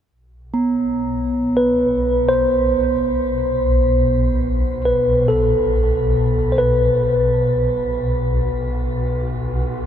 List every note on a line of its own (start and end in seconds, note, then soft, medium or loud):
0.11 9.86 B1 medium
0.54 9.23 B3 soft
1.57 2.32 B4 medium
2.29 4.81 C5 medium
4.85 5.29 B4 medium
5.28 6.55 A4 medium
6.52 6.59 C5 soft
6.58 9.27 B4 medium